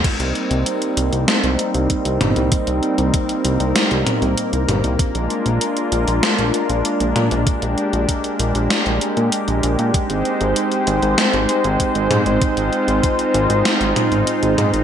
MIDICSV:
0, 0, Header, 1, 4, 480
1, 0, Start_track
1, 0, Key_signature, -3, "minor"
1, 0, Tempo, 618557
1, 35, Time_signature, 4, 2, 24, 8
1, 11514, End_track
2, 0, Start_track
2, 0, Title_t, "Analog synth pad"
2, 0, Program_c, 0, 89
2, 33, Note_on_c, 0, 63, 79
2, 34, Note_on_c, 0, 55, 91
2, 34, Note_on_c, 0, 58, 83
2, 34, Note_on_c, 0, 60, 79
2, 34, Note_on_c, 0, 70, 92
2, 3843, Note_off_c, 0, 60, 0
2, 3843, Note_off_c, 0, 63, 0
2, 3844, Note_off_c, 0, 55, 0
2, 3873, Note_on_c, 0, 56, 87
2, 3873, Note_on_c, 0, 62, 79
2, 3873, Note_on_c, 0, 65, 84
2, 5775, Note_off_c, 0, 65, 0
2, 5793, Note_on_c, 0, 67, 78
2, 7683, Note_off_c, 0, 62, 0
2, 7684, Note_off_c, 0, 58, 0
2, 7684, Note_off_c, 0, 70, 0
2, 7716, Note_on_c, 0, 60, 79
2, 7717, Note_on_c, 0, 63, 84
2, 7717, Note_on_c, 0, 72, 97
2, 9603, Note_off_c, 0, 67, 0
2, 9636, Note_on_c, 0, 65, 79
2, 11514, Note_off_c, 0, 56, 0
2, 11514, Note_off_c, 0, 60, 0
2, 11514, Note_off_c, 0, 63, 0
2, 11514, Note_off_c, 0, 65, 0
2, 11514, Note_off_c, 0, 72, 0
2, 11514, End_track
3, 0, Start_track
3, 0, Title_t, "Analog synth bass"
3, 0, Program_c, 1, 38
3, 154, Note_on_c, 1, 36, 80
3, 258, Note_off_c, 1, 36, 0
3, 393, Note_on_c, 1, 36, 79
3, 498, Note_off_c, 1, 36, 0
3, 754, Note_on_c, 1, 36, 89
3, 858, Note_off_c, 1, 36, 0
3, 873, Note_on_c, 1, 36, 81
3, 978, Note_off_c, 1, 36, 0
3, 1114, Note_on_c, 1, 36, 79
3, 1218, Note_off_c, 1, 36, 0
3, 1354, Note_on_c, 1, 36, 82
3, 1458, Note_off_c, 1, 36, 0
3, 1594, Note_on_c, 1, 36, 73
3, 1698, Note_off_c, 1, 36, 0
3, 1714, Note_on_c, 1, 31, 90
3, 1818, Note_off_c, 1, 31, 0
3, 1834, Note_on_c, 1, 36, 83
3, 1938, Note_off_c, 1, 36, 0
3, 2075, Note_on_c, 1, 36, 74
3, 2179, Note_off_c, 1, 36, 0
3, 2316, Note_on_c, 1, 36, 83
3, 2419, Note_off_c, 1, 36, 0
3, 2675, Note_on_c, 1, 36, 90
3, 2778, Note_off_c, 1, 36, 0
3, 2795, Note_on_c, 1, 36, 79
3, 2899, Note_off_c, 1, 36, 0
3, 3035, Note_on_c, 1, 36, 77
3, 3139, Note_off_c, 1, 36, 0
3, 3275, Note_on_c, 1, 36, 79
3, 3379, Note_off_c, 1, 36, 0
3, 3515, Note_on_c, 1, 36, 72
3, 3619, Note_off_c, 1, 36, 0
3, 3636, Note_on_c, 1, 31, 93
3, 3739, Note_off_c, 1, 31, 0
3, 3756, Note_on_c, 1, 36, 86
3, 3859, Note_off_c, 1, 36, 0
3, 3995, Note_on_c, 1, 34, 73
3, 4099, Note_off_c, 1, 34, 0
3, 4235, Note_on_c, 1, 34, 81
3, 4339, Note_off_c, 1, 34, 0
3, 4595, Note_on_c, 1, 34, 90
3, 4699, Note_off_c, 1, 34, 0
3, 4716, Note_on_c, 1, 34, 81
3, 4819, Note_off_c, 1, 34, 0
3, 4955, Note_on_c, 1, 34, 77
3, 5059, Note_off_c, 1, 34, 0
3, 5196, Note_on_c, 1, 34, 80
3, 5299, Note_off_c, 1, 34, 0
3, 5435, Note_on_c, 1, 34, 74
3, 5539, Note_off_c, 1, 34, 0
3, 5555, Note_on_c, 1, 46, 96
3, 5659, Note_off_c, 1, 46, 0
3, 5676, Note_on_c, 1, 34, 83
3, 5779, Note_off_c, 1, 34, 0
3, 5916, Note_on_c, 1, 34, 77
3, 6019, Note_off_c, 1, 34, 0
3, 6156, Note_on_c, 1, 34, 81
3, 6259, Note_off_c, 1, 34, 0
3, 6515, Note_on_c, 1, 34, 93
3, 6619, Note_off_c, 1, 34, 0
3, 6636, Note_on_c, 1, 34, 81
3, 6739, Note_off_c, 1, 34, 0
3, 6876, Note_on_c, 1, 34, 78
3, 6979, Note_off_c, 1, 34, 0
3, 7116, Note_on_c, 1, 46, 83
3, 7219, Note_off_c, 1, 46, 0
3, 7356, Note_on_c, 1, 34, 74
3, 7459, Note_off_c, 1, 34, 0
3, 7477, Note_on_c, 1, 34, 92
3, 7579, Note_off_c, 1, 34, 0
3, 7597, Note_on_c, 1, 46, 85
3, 7699, Note_off_c, 1, 46, 0
3, 7836, Note_on_c, 1, 32, 73
3, 7939, Note_off_c, 1, 32, 0
3, 8076, Note_on_c, 1, 32, 80
3, 8179, Note_off_c, 1, 32, 0
3, 8436, Note_on_c, 1, 32, 92
3, 8539, Note_off_c, 1, 32, 0
3, 8556, Note_on_c, 1, 32, 81
3, 8659, Note_off_c, 1, 32, 0
3, 8796, Note_on_c, 1, 32, 76
3, 8899, Note_off_c, 1, 32, 0
3, 9036, Note_on_c, 1, 32, 82
3, 9139, Note_off_c, 1, 32, 0
3, 9276, Note_on_c, 1, 32, 74
3, 9379, Note_off_c, 1, 32, 0
3, 9395, Note_on_c, 1, 44, 98
3, 9498, Note_off_c, 1, 44, 0
3, 9514, Note_on_c, 1, 32, 84
3, 9618, Note_off_c, 1, 32, 0
3, 9755, Note_on_c, 1, 32, 75
3, 9859, Note_off_c, 1, 32, 0
3, 9994, Note_on_c, 1, 32, 82
3, 10098, Note_off_c, 1, 32, 0
3, 10355, Note_on_c, 1, 32, 91
3, 10459, Note_off_c, 1, 32, 0
3, 10474, Note_on_c, 1, 32, 79
3, 10578, Note_off_c, 1, 32, 0
3, 10715, Note_on_c, 1, 32, 76
3, 10819, Note_off_c, 1, 32, 0
3, 10956, Note_on_c, 1, 32, 80
3, 11059, Note_off_c, 1, 32, 0
3, 11194, Note_on_c, 1, 32, 77
3, 11298, Note_off_c, 1, 32, 0
3, 11315, Note_on_c, 1, 44, 97
3, 11419, Note_off_c, 1, 44, 0
3, 11434, Note_on_c, 1, 32, 80
3, 11514, Note_off_c, 1, 32, 0
3, 11514, End_track
4, 0, Start_track
4, 0, Title_t, "Drums"
4, 34, Note_on_c, 9, 36, 117
4, 35, Note_on_c, 9, 42, 93
4, 35, Note_on_c, 9, 49, 90
4, 111, Note_off_c, 9, 36, 0
4, 112, Note_off_c, 9, 42, 0
4, 112, Note_off_c, 9, 49, 0
4, 154, Note_on_c, 9, 42, 37
4, 232, Note_off_c, 9, 42, 0
4, 274, Note_on_c, 9, 42, 37
4, 352, Note_off_c, 9, 42, 0
4, 394, Note_on_c, 9, 42, 39
4, 471, Note_off_c, 9, 42, 0
4, 514, Note_on_c, 9, 42, 88
4, 592, Note_off_c, 9, 42, 0
4, 634, Note_on_c, 9, 42, 40
4, 712, Note_off_c, 9, 42, 0
4, 754, Note_on_c, 9, 42, 66
4, 832, Note_off_c, 9, 42, 0
4, 874, Note_on_c, 9, 42, 41
4, 951, Note_off_c, 9, 42, 0
4, 993, Note_on_c, 9, 38, 106
4, 993, Note_on_c, 9, 42, 82
4, 1071, Note_off_c, 9, 38, 0
4, 1071, Note_off_c, 9, 42, 0
4, 1114, Note_on_c, 9, 42, 39
4, 1192, Note_off_c, 9, 42, 0
4, 1234, Note_on_c, 9, 42, 67
4, 1311, Note_off_c, 9, 42, 0
4, 1354, Note_on_c, 9, 42, 36
4, 1431, Note_off_c, 9, 42, 0
4, 1473, Note_on_c, 9, 42, 92
4, 1474, Note_on_c, 9, 36, 58
4, 1551, Note_off_c, 9, 42, 0
4, 1552, Note_off_c, 9, 36, 0
4, 1593, Note_on_c, 9, 42, 41
4, 1671, Note_off_c, 9, 42, 0
4, 1713, Note_on_c, 9, 42, 63
4, 1713, Note_on_c, 9, 47, 92
4, 1791, Note_off_c, 9, 42, 0
4, 1791, Note_off_c, 9, 47, 0
4, 1833, Note_on_c, 9, 42, 41
4, 1911, Note_off_c, 9, 42, 0
4, 1953, Note_on_c, 9, 42, 92
4, 1954, Note_on_c, 9, 36, 119
4, 2031, Note_off_c, 9, 42, 0
4, 2032, Note_off_c, 9, 36, 0
4, 2073, Note_on_c, 9, 42, 39
4, 2151, Note_off_c, 9, 42, 0
4, 2194, Note_on_c, 9, 42, 37
4, 2271, Note_off_c, 9, 42, 0
4, 2314, Note_on_c, 9, 42, 39
4, 2392, Note_off_c, 9, 42, 0
4, 2434, Note_on_c, 9, 36, 109
4, 2434, Note_on_c, 9, 42, 89
4, 2512, Note_off_c, 9, 36, 0
4, 2512, Note_off_c, 9, 42, 0
4, 2555, Note_on_c, 9, 42, 40
4, 2632, Note_off_c, 9, 42, 0
4, 2674, Note_on_c, 9, 42, 65
4, 2752, Note_off_c, 9, 42, 0
4, 2795, Note_on_c, 9, 42, 41
4, 2872, Note_off_c, 9, 42, 0
4, 2915, Note_on_c, 9, 38, 109
4, 2915, Note_on_c, 9, 42, 88
4, 2992, Note_off_c, 9, 38, 0
4, 2992, Note_off_c, 9, 42, 0
4, 3035, Note_on_c, 9, 42, 40
4, 3112, Note_off_c, 9, 42, 0
4, 3155, Note_on_c, 9, 42, 68
4, 3155, Note_on_c, 9, 47, 89
4, 3232, Note_off_c, 9, 42, 0
4, 3232, Note_off_c, 9, 47, 0
4, 3275, Note_on_c, 9, 42, 37
4, 3353, Note_off_c, 9, 42, 0
4, 3395, Note_on_c, 9, 42, 92
4, 3473, Note_off_c, 9, 42, 0
4, 3516, Note_on_c, 9, 42, 42
4, 3593, Note_off_c, 9, 42, 0
4, 3636, Note_on_c, 9, 42, 64
4, 3636, Note_on_c, 9, 47, 59
4, 3713, Note_off_c, 9, 42, 0
4, 3713, Note_off_c, 9, 47, 0
4, 3756, Note_on_c, 9, 42, 40
4, 3833, Note_off_c, 9, 42, 0
4, 3874, Note_on_c, 9, 36, 116
4, 3875, Note_on_c, 9, 42, 96
4, 3952, Note_off_c, 9, 36, 0
4, 3953, Note_off_c, 9, 42, 0
4, 3996, Note_on_c, 9, 42, 38
4, 4074, Note_off_c, 9, 42, 0
4, 4115, Note_on_c, 9, 42, 35
4, 4193, Note_off_c, 9, 42, 0
4, 4235, Note_on_c, 9, 42, 38
4, 4313, Note_off_c, 9, 42, 0
4, 4355, Note_on_c, 9, 42, 89
4, 4433, Note_off_c, 9, 42, 0
4, 4475, Note_on_c, 9, 42, 40
4, 4552, Note_off_c, 9, 42, 0
4, 4594, Note_on_c, 9, 42, 65
4, 4672, Note_off_c, 9, 42, 0
4, 4715, Note_on_c, 9, 42, 43
4, 4792, Note_off_c, 9, 42, 0
4, 4834, Note_on_c, 9, 38, 114
4, 4834, Note_on_c, 9, 42, 85
4, 4912, Note_off_c, 9, 38, 0
4, 4912, Note_off_c, 9, 42, 0
4, 4955, Note_on_c, 9, 42, 40
4, 5032, Note_off_c, 9, 42, 0
4, 5075, Note_on_c, 9, 42, 66
4, 5153, Note_off_c, 9, 42, 0
4, 5195, Note_on_c, 9, 42, 36
4, 5273, Note_off_c, 9, 42, 0
4, 5315, Note_on_c, 9, 42, 91
4, 5393, Note_off_c, 9, 42, 0
4, 5435, Note_on_c, 9, 42, 40
4, 5513, Note_off_c, 9, 42, 0
4, 5554, Note_on_c, 9, 42, 62
4, 5554, Note_on_c, 9, 47, 85
4, 5632, Note_off_c, 9, 42, 0
4, 5632, Note_off_c, 9, 47, 0
4, 5675, Note_on_c, 9, 42, 39
4, 5752, Note_off_c, 9, 42, 0
4, 5794, Note_on_c, 9, 36, 122
4, 5795, Note_on_c, 9, 42, 91
4, 5872, Note_off_c, 9, 36, 0
4, 5872, Note_off_c, 9, 42, 0
4, 5915, Note_on_c, 9, 42, 36
4, 5992, Note_off_c, 9, 42, 0
4, 6035, Note_on_c, 9, 42, 34
4, 6112, Note_off_c, 9, 42, 0
4, 6155, Note_on_c, 9, 42, 36
4, 6233, Note_off_c, 9, 42, 0
4, 6274, Note_on_c, 9, 36, 57
4, 6275, Note_on_c, 9, 42, 87
4, 6352, Note_off_c, 9, 36, 0
4, 6353, Note_off_c, 9, 42, 0
4, 6395, Note_on_c, 9, 42, 39
4, 6473, Note_off_c, 9, 42, 0
4, 6515, Note_on_c, 9, 42, 58
4, 6592, Note_off_c, 9, 42, 0
4, 6635, Note_on_c, 9, 42, 39
4, 6712, Note_off_c, 9, 42, 0
4, 6755, Note_on_c, 9, 38, 112
4, 6755, Note_on_c, 9, 42, 82
4, 6832, Note_off_c, 9, 38, 0
4, 6832, Note_off_c, 9, 42, 0
4, 6875, Note_on_c, 9, 42, 37
4, 6953, Note_off_c, 9, 42, 0
4, 6995, Note_on_c, 9, 42, 66
4, 7072, Note_off_c, 9, 42, 0
4, 7115, Note_on_c, 9, 42, 35
4, 7193, Note_off_c, 9, 42, 0
4, 7234, Note_on_c, 9, 42, 84
4, 7312, Note_off_c, 9, 42, 0
4, 7355, Note_on_c, 9, 42, 37
4, 7432, Note_off_c, 9, 42, 0
4, 7475, Note_on_c, 9, 42, 62
4, 7553, Note_off_c, 9, 42, 0
4, 7595, Note_on_c, 9, 42, 39
4, 7673, Note_off_c, 9, 42, 0
4, 7715, Note_on_c, 9, 36, 117
4, 7716, Note_on_c, 9, 42, 85
4, 7793, Note_off_c, 9, 36, 0
4, 7793, Note_off_c, 9, 42, 0
4, 7836, Note_on_c, 9, 42, 36
4, 7913, Note_off_c, 9, 42, 0
4, 7956, Note_on_c, 9, 42, 34
4, 8034, Note_off_c, 9, 42, 0
4, 8075, Note_on_c, 9, 42, 36
4, 8153, Note_off_c, 9, 42, 0
4, 8195, Note_on_c, 9, 42, 87
4, 8273, Note_off_c, 9, 42, 0
4, 8315, Note_on_c, 9, 42, 36
4, 8393, Note_off_c, 9, 42, 0
4, 8435, Note_on_c, 9, 42, 58
4, 8513, Note_off_c, 9, 42, 0
4, 8555, Note_on_c, 9, 42, 39
4, 8633, Note_off_c, 9, 42, 0
4, 8675, Note_on_c, 9, 38, 113
4, 8675, Note_on_c, 9, 42, 83
4, 8753, Note_off_c, 9, 38, 0
4, 8753, Note_off_c, 9, 42, 0
4, 8795, Note_on_c, 9, 42, 35
4, 8873, Note_off_c, 9, 42, 0
4, 8916, Note_on_c, 9, 42, 62
4, 8993, Note_off_c, 9, 42, 0
4, 9035, Note_on_c, 9, 42, 35
4, 9113, Note_off_c, 9, 42, 0
4, 9155, Note_on_c, 9, 36, 59
4, 9155, Note_on_c, 9, 42, 86
4, 9232, Note_off_c, 9, 36, 0
4, 9233, Note_off_c, 9, 42, 0
4, 9275, Note_on_c, 9, 42, 38
4, 9352, Note_off_c, 9, 42, 0
4, 9395, Note_on_c, 9, 42, 58
4, 9395, Note_on_c, 9, 47, 84
4, 9472, Note_off_c, 9, 42, 0
4, 9472, Note_off_c, 9, 47, 0
4, 9514, Note_on_c, 9, 42, 37
4, 9592, Note_off_c, 9, 42, 0
4, 9634, Note_on_c, 9, 42, 85
4, 9635, Note_on_c, 9, 36, 111
4, 9712, Note_off_c, 9, 36, 0
4, 9712, Note_off_c, 9, 42, 0
4, 9755, Note_on_c, 9, 42, 35
4, 9832, Note_off_c, 9, 42, 0
4, 9875, Note_on_c, 9, 42, 32
4, 9953, Note_off_c, 9, 42, 0
4, 9995, Note_on_c, 9, 42, 34
4, 10073, Note_off_c, 9, 42, 0
4, 10115, Note_on_c, 9, 36, 96
4, 10115, Note_on_c, 9, 42, 85
4, 10192, Note_off_c, 9, 36, 0
4, 10193, Note_off_c, 9, 42, 0
4, 10235, Note_on_c, 9, 42, 36
4, 10312, Note_off_c, 9, 42, 0
4, 10355, Note_on_c, 9, 42, 61
4, 10433, Note_off_c, 9, 42, 0
4, 10475, Note_on_c, 9, 42, 40
4, 10553, Note_off_c, 9, 42, 0
4, 10595, Note_on_c, 9, 38, 105
4, 10595, Note_on_c, 9, 42, 82
4, 10673, Note_off_c, 9, 38, 0
4, 10673, Note_off_c, 9, 42, 0
4, 10715, Note_on_c, 9, 42, 35
4, 10793, Note_off_c, 9, 42, 0
4, 10835, Note_on_c, 9, 42, 60
4, 10835, Note_on_c, 9, 47, 90
4, 10913, Note_off_c, 9, 42, 0
4, 10913, Note_off_c, 9, 47, 0
4, 10955, Note_on_c, 9, 42, 35
4, 11033, Note_off_c, 9, 42, 0
4, 11074, Note_on_c, 9, 42, 85
4, 11152, Note_off_c, 9, 42, 0
4, 11195, Note_on_c, 9, 42, 38
4, 11272, Note_off_c, 9, 42, 0
4, 11315, Note_on_c, 9, 42, 56
4, 11315, Note_on_c, 9, 47, 56
4, 11393, Note_off_c, 9, 42, 0
4, 11393, Note_off_c, 9, 47, 0
4, 11435, Note_on_c, 9, 42, 36
4, 11513, Note_off_c, 9, 42, 0
4, 11514, End_track
0, 0, End_of_file